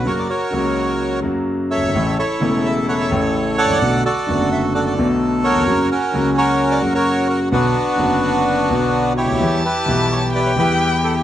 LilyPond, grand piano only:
\new Staff \with { instrumentName = "Grand piano" } { \clef bass \time 4/4 \key b \minor \tempo 4 = 128 << { <fis, cis fis ais fis'>8 r8 <cis, cis fis ais fis'>4. <fis, cis fis ais fis'>4. | <a,, a, cis e a e'>8 r8 <e,, e, cis e a e'>4. <a,, a, cis e a e'>4. | <b,, b, d a b fis'>8 r8 <fis,, fis, d a b fis'>4. <b,, b, d a b fis'>4. | <fis, cis fis ais fis'>8 r8 <cis, cis fis ais fis'>4. <fis, cis fis ais fis'>4. |
<b,, b, d fis b fis'>8 r8 <fis,, fis, d fis b fis'>4. <b,, b, d fis b fis'>4. | <e, e g b g'>8 r8 <b,, b, e g b g'>4. <e, e g b g'>4. | } \\ { r2. r8 r32 fis,,32 g,,32 gis,,32 | r2. r8 r32 gis,,32 a,,32 ais,,32 | r2. r8 r32 dis,32 e,32 eis,32 | r1 |
r2. r8 r32 cis,32 d,32 dis,32 | r1 | } >> }